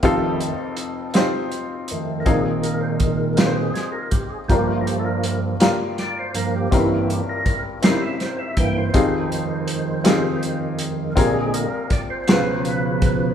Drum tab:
HH |xxxxxx|xxxxxx|xxxxxx|xxxxxx|
SD |---o--|---oo-|---oo-|---oo-|
BD |o-----|o-o--o|o-----|o-o--o|

HH |xxxxxx|xxxxxx|
SD |---o--|---o--|
BD |o-----|o-o--o|